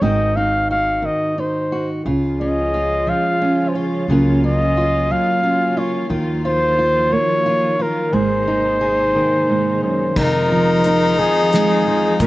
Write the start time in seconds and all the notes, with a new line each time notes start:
0.01 G#1 G#2 D#3 C4 D#4 F#4 D#5
0.36 D#4 F5
0.71 F#4 F5
1.02 D#3 D#5
1.38 D#4 C5
1.72 F#4
2.04 C#2 C#3 F3 G#3 F4
2.40 C#4 D#5
2.74 F4
3.07 F3 F5
3.42 C#4
3.69 C5
3.75 F4 C#5
4.07 C#2 C#3 F#3 A#3 C#4
4.12 F4
4.44 C#4 D#5
4.77 F4
5.11 F#3 F5
5.43 C#4
5.77 F4 C#5
6.09 D#2 D#3 F3 F#3 F4
6.45 F4 C5
6.79 F4
7.12 A#3 C#5
7.46 F4
7.79 F4 A#4
8.12 G#1 G#2 C3 G#3 D#4 G#4 C5
8.48 D#4
8.81 G#4
9.15 D#3
9.50 G#2
9.83 F#2 C5
10.16 F1 F2 D#3 F3 G#3 C4 D#4 F4 A#4, kick, crash
10.52 F3
10.84 D#4, closed hi-hat
11.19 F3 G#4
11.52 G#3 G#4, snare, closed hi-hat
11.87 F3
12.20 A#1 A#2 C#3 G#3 A#3 C#4 A#4, kick, closed hi-hat